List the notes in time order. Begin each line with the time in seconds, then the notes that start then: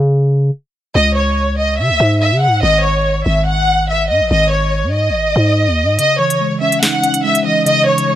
Already playing: C#3
0.95 C#2 D#5
1.16 C#5
1.58 D#5
1.79 C#3 E5
1.90 C#2
2.00 G#2
2.21 E5
2.32 C#3
2.42 F#5
2.47 G#2
2.63 G#1 D#5
2.83 C#5
3.26 G#1 E5
3.47 F#5
3.89 E5
4.10 G#2 D#5
4.20 G#1
4.31 G#1 D#5
4.52 C#5
4.83 G#2
4.94 D#5
5.10 G#1
5.36 G#2
5.67 D#2
5.83 G#2
5.99 C#3 D#5, closed hi-hat
6.19 E3 C#5
6.30 closed hi-hat
6.41 G#3
6.61 C#4 E5
6.72 closed hi-hat
6.83 D#4 F#5, snare
7.03 C#4, closed hi-hat
7.14 closed hi-hat
7.24 G#3 E5
7.35 closed hi-hat
7.45 E3 D#5
7.65 C#3 D#5, closed hi-hat
7.88 E3 C#5
7.98 closed hi-hat
8.08 G#3